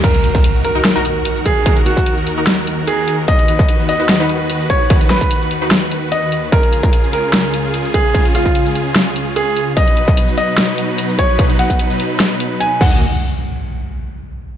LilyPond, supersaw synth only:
\new Staff \with { instrumentName = "Supersaw synth" } { \time 4/4 \key ees \minor \tempo 4 = 148 << { <ges' bes'>1~ | <ges' bes'>1 | <fis' b'>1~ | <fis' b'>1 |
<f' aes'>1~ | <f' aes'>1 | <dis' b'>1~ | <dis' b'>2.~ <dis' b'>8 <ees bes ges' ees''>8 |
r1 | } \\ { <ees, ees>1~ | <ees, ees>1~ | <ees, ees>1~ | <ees, ees>1 |
<des, des>1~ | <des, des>1 | <b, fis>1~ | <b, fis>2.~ <b, fis>8 r8 |
r1 | } >> }